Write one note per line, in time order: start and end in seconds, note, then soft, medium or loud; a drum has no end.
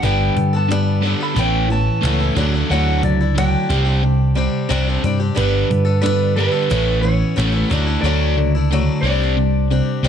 0.02 0.29 G1 medium
0.02 0.34 G2 medium
0.02 0.34 D3 medium
0.02 0.53 G3 medium
0.02 0.54 B3 medium
0.02 0.53 D4 medium
0.02 0.52 A4 medium
0.02 0.55 G5 loud
0.02 cajon bass loud
0.36 0.66 G2 medium
0.36 1.14 G2 medium
0.36 0.67 D3 medium
0.36 cajon bass medium
0.53 0.70 B3 soft
0.53 0.71 D4 medium
0.53 0.70 A4 medium
0.53 1.18 A5 medium
0.69 0.99 G2 medium
0.69 1.00 D3 medium
0.69 1.02 G3 medium
0.69 1.04 B3 medium
0.69 1.04 D4 medium
0.69 1.05 A4 medium
0.69 cajon slap medium
1.02 1.34 G2 medium
1.02 1.34 D3 loud
1.02 1.20 G3 medium
1.02 1.21 B3 medium
1.02 1.21 D4 medium
1.02 cajon slap soft
1.07 1.19 A4 medium
1.20 1.37 B3 soft
1.20 1.38 D4 soft
1.20 1.37 A4 soft
1.20 1.38 B5 medium
1.36 1.88 A1 medium
1.36 1.70 A2 medium
1.36 1.69 E3 medium
1.36 1.68 A3 loud
1.36 1.70 B3 medium
1.36 1.71 C#4 medium
1.36 1.71 E4 medium
1.36 1.69 G5 medium
1.36 cajon bass loud
1.68 1.99 A2 medium
1.68 2.03 E3 medium
1.68 2.04 B3 medium
1.68 2.67 A5 medium
1.68 cajon slap soft
1.72 2.05 C#4 medium
1.72 2.05 E4 medium
2.03 2.29 C#2 medium
2.03 2.21 A2 medium
2.03 2.21 E3 medium
2.03 2.34 A3 loud
2.03 2.21 B3 medium
2.03 2.21 C#4 medium
2.03 2.18 E4 medium
2.03 cajon bass medium
2.03 cajon slap loud
2.20 2.37 B3 soft
2.20 2.37 C#4 soft
2.20 2.36 E4 soft
2.35 2.62 D2 medium
2.35 2.67 D3 medium
2.35 2.53 F#3 medium
2.35 2.54 A3 medium
2.35 2.54 D4 medium
2.35 cajon bass medium
2.40 2.53 E4 medium
2.54 2.71 A3 soft
2.54 2.71 D4 soft
2.54 2.70 E4 soft
2.54 cajon slap soft
2.70 3.03 D2 loud
2.70 3.20 D3 medium
2.70 3.21 F#3 medium
2.70 3.21 A3 medium
2.70 3.21 D4 medium
2.70 3.19 E4 medium
2.70 3.01 F#5 loud
2.70 cajon slap soft
3.03 3.55 C#2 medium
3.03 3.33 D3 medium
3.03 3.33 F#3 medium
3.03 3.35 D5 medium
3.03 cajon bass medium
3.21 3.37 A3 soft
3.21 3.37 D4 soft
3.21 3.37 E4 medium
3.36 3.66 D3 medium
3.36 3.69 F#3 medium
3.36 3.70 A3 medium
3.36 3.71 D4 medium
3.36 3.71 E4 medium
3.36 4.42 G5 medium
3.36 cajon slap loud
3.70 4.47 C2 medium
3.70 4.01 C3 medium
3.70 3.86 G3 medium
3.70 3.87 C4 medium
3.70 3.85 D4 medium
3.70 3.84 G4 medium
3.70 cajon bass loud
3.85 4.36 C4 soft
3.85 4.36 D4 soft
3.85 4.36 G4 soft
4.03 4.33 C3 medium
4.03 4.33 G3 medium
4.03 cajon slap soft
4.35 4.67 C3 medium
4.35 4.69 G3 medium
4.35 4.69 C4 medium
4.35 4.70 D4 medium
4.35 4.70 G4 medium
4.35 cajon slap soft
4.42 5.00 F#5 medium
4.56 cajon slap soft
4.69 4.96 C2 medium
4.69 4.86 C3 medium
4.69 4.87 G3 medium
4.69 4.87 C4 medium
4.69 4.87 D4 medium
4.69 4.86 G4 medium
4.69 cajon bass medium
4.69 cajon slap medium
4.87 5.04 C4 soft
4.87 5.04 D4 medium
4.87 5.04 G4 medium
4.87 cajon slap soft
5.04 5.30 G2 medium
5.04 5.33 C3 medium
5.04 5.21 G3 medium
5.04 5.21 C4 medium
5.04 5.20 D4 medium
5.04 5.18 G4 medium
5.04 cajon bass medium
5.20 5.35 C4 soft
5.20 5.36 D4 soft
5.20 5.37 G4 medium
5.35 5.63 G1 medium
5.35 5.68 G2 medium
5.35 5.68 D3 medium
5.35 5.86 G3 medium
5.35 5.86 B3 medium
5.35 5.85 D4 medium
5.35 5.84 A4 medium
5.35 5.99 B4 medium
5.35 cajon bass loud
5.70 6.00 G2 medium
5.70 6.47 G2 medium
5.70 6.00 D3 medium
5.70 cajon bass medium
5.85 6.01 B3 soft
5.85 6.02 D4 medium
5.85 6.02 A4 medium
6.01 6.33 G2 medium
6.01 6.33 D3 medium
6.01 6.35 G3 medium
6.01 6.36 B3 medium
6.01 6.36 D4 medium
6.01 6.37 A4 medium
6.01 6.33 B4 medium
6.06 cajon slap medium
6.36 6.68 G2 medium
6.36 6.69 D3 medium
6.36 6.53 G3 medium
6.36 6.53 B3 medium
6.36 6.52 D4 medium
6.36 7.01 B4 medium
6.36 cajon slap soft
6.40 6.50 A4 medium
6.51 6.70 B3 soft
6.51 6.70 D4 soft
6.51 6.69 A4 soft
6.70 7.22 A1 loud
6.70 7.03 A2 medium
6.70 7.02 E3 medium
6.70 7.02 A3 loud
6.70 7.02 B3 medium
6.70 7.03 C#4 medium
6.70 7.04 E4 medium
6.70 cajon bass loud
7.01 7.33 A2 medium
7.01 7.35 E3 medium
7.01 7.35 B3 medium
7.01 7.37 C#4 medium
7.01 7.37 E4 medium
7.01 8.01 C#5 medium
7.01 cajon slap soft
7.23 cajon slap soft
7.36 7.63 A1 medium
7.36 7.53 A2 medium
7.36 7.53 E3 medium
7.36 7.69 A3 loud
7.36 7.53 B3 medium
7.36 7.52 C#4 medium
7.36 7.51 E4 medium
7.36 cajon bass medium
7.36 cajon slap loud
7.52 7.71 B3 soft
7.52 7.70 C#4 soft
7.52 7.69 E4 medium
7.70 7.96 D2 medium
7.70 8.02 D3 medium
7.70 7.87 F#3 medium
7.70 7.87 A3 medium
7.70 7.87 D4 medium
7.70 7.85 E4 medium
7.70 cajon bass loud
7.87 8.04 A3 soft
7.87 8.04 D4 soft
7.87 8.03 E4 medium
8.01 8.36 D2 medium
8.01 8.54 D3 medium
8.01 8.54 F#3 medium
8.01 8.54 A3 medium
8.01 8.54 D4 medium
8.01 9.00 D5 loud
8.01 cajon slap soft
8.06 8.54 E4 medium
8.36 8.88 C#2 medium
8.36 8.67 D3 medium
8.36 8.67 A3 medium
8.36 cajon slap soft
8.55 8.72 A3 soft
8.55 8.71 D4 soft
8.55 8.71 E4 soft
8.71 9.01 D3 medium
8.71 9.04 F#3 medium
8.71 9.05 A3 medium
8.71 9.05 D4 medium
8.71 9.05 E4 medium
8.71 cajon slap soft
9.01 9.80 C2 medium
9.01 9.35 C3 medium
9.01 9.20 G3 medium
9.01 9.98 D5 medium
9.01 cajon slap soft
9.06 9.21 C4 medium
9.06 9.22 D4 medium
9.06 9.20 G4 medium
9.21 9.71 C4 soft
9.21 9.71 D4 soft
9.21 9.71 G4 soft
9.37 9.67 C3 medium
9.37 9.67 G3 medium
9.37 cajon slap soft
9.71 10.00 C3 medium
9.71 10.04 G3 medium
9.71 10.03 C4 medium
9.71 10.04 D4 medium
9.71 10.05 G4 medium
9.71 cajon slap soft
10.03 10.08 C2 medium
10.03 10.08 C3 medium
10.03 10.08 G3 medium
10.03 10.08 C4 medium